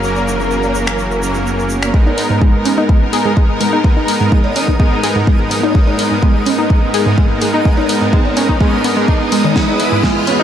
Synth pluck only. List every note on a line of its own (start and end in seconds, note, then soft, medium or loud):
1.94 2.00 G#3 medium
2.06 2.12 D#4 medium
2.30 2.38 G#2 medium
2.42 2.50 G#3 loud
2.65 2.74 C#4 medium
2.78 2.81 D#4 loud
2.89 2.95 G#3 medium
3.13 3.19 G#4 loud
3.25 3.31 G#2 loud
3.37 3.46 G#3 loud
3.61 3.69 G#3 medium
3.73 3.76 D#4 loud
3.84 3.90 G#3 medium
3.97 4.02 D#4 medium
4.21 4.29 G#2 medium
4.32 4.41 G#3 loud
4.56 4.65 C#4 medium
4.68 4.72 D#4 loud
4.80 4.86 G#3 medium
5.03 5.09 G#4 loud
5.16 5.21 G#2 loud
5.27 5.36 G#3 loud
5.51 5.60 G#3 medium
5.63 5.67 D#4 loud
5.75 5.81 G#3 medium
5.87 5.93 D#4 medium
6.11 6.19 G#2 medium
6.22 6.31 G#3 loud
6.46 6.55 C#4 medium
6.59 6.62 D#4 loud
6.70 6.76 G#3 medium
6.94 7.00 G#4 loud
7.06 7.12 G#2 loud
7.18 7.27 G#3 loud
7.42 7.50 G#3 medium
7.54 7.57 D#4 loud
7.65 7.71 G#3 medium
7.78 7.83 D#4 medium
8.01 8.10 G#2 medium
8.13 8.22 G#3 loud
8.37 8.46 C#4 medium
8.49 8.52 D#4 loud
8.61 8.67 G#3 medium
8.84 8.90 B3 medium
8.97 9.02 G#3 medium
9.08 9.17 D#4 medium
9.32 9.41 G#3 medium
9.44 9.48 D#3 medium
9.56 9.62 G#3 medium
9.68 9.74 D#4 medium
9.92 10.00 G#2 medium
10.03 10.12 G#3 loud
10.27 10.36 C#4 medium
10.40 10.43 D#4 loud